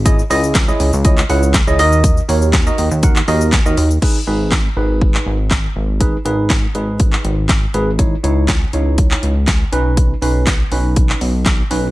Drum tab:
CC |----------------|----------------|x---------------|----------------|
HH |x-o-x-o-x-o-x-o-|x-o-x-o-x-o-x-o-|----------------|x-x-x-x-x-x-x-x-|
SH |xxxxxxxxxxxxxxxx|xxxxxxxxxxxxxxxx|----------------|----------------|
CP |----x----x--x---|----x----x--x---|----x----x--x---|----x----x--x---|
SD |----o-------o---|----o-------o---|----o-------o---|----o-------o---|
BD |o---o---o---o---|o---o---o---o---|o---o---o---o---|o---o---o---o---|

CC |----------------|----------------|
HH |x-x-x-x-x-x-x-x-|x-o-x-o-x-o-x-o-|
SH |----------------|----------------|
CP |----x----x--x---|----x----x--x---|
SD |----o-------o---|----o-------o---|
BD |o---o---o---o---|o---o---o---o---|